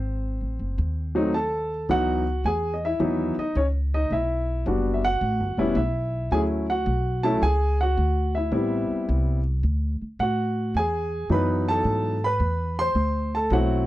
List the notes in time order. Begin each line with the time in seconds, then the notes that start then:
Already playing: G#1 C4 C5
0.41 A1
0.59 F#1
0.78 D#2
1.15 F#3 A3 C4 D#4
1.34 A4 A5
1.89 C#2 E3 F#3 B3 D#4 F#4 F#5
2.44 E2 G#4 G#5
2.74 D#5
2.85 E4 E5
3.00 D#2 E3 F#3 B3 D#4
3.37 D#4 D#5, muted upright bass stroke
3.55 C#2 C#4 C#5
3.94 D#4 D#5
4.10 B1 E4 E5
4.66 F#1 G3 B3 D4 F#4
4.94 E5
5.05 F#4 F#5
5.21 A1
5.40 G1
5.57 E1 G3 B3 C#4 E4
5.75 B1 E4 E5
6.31 D2 F#3 A3 C#4 E4 G#4 G#5
6.70 F#4 F#5
6.86 B1
7.23 F#3 A3 C#4 E4 A4 A5
7.42 C#2 G#4 G#5
7.81 F#4 F#5
7.97 D2
8.35 E4 E5
8.52 A1 G3 B3 C4 E4
8.90 muted upright bass stroke
9.09 C2
9.63 D2
10.02 muted upright bass stroke
10.19 A2 F#4 F#5
10.74 E2 G#5
10.79 G#4
11.29 F#2 E3 F#3 B3 D#4 B5
11.34 B4
11.69 A4 A5
11.84 G#2
12.24 B4 B5
12.40 E2
12.79 C5 C6
12.95 D2
13.35 A4 A5
13.50 B1 F#3 A3 C4 E4 F#5
13.55 F#4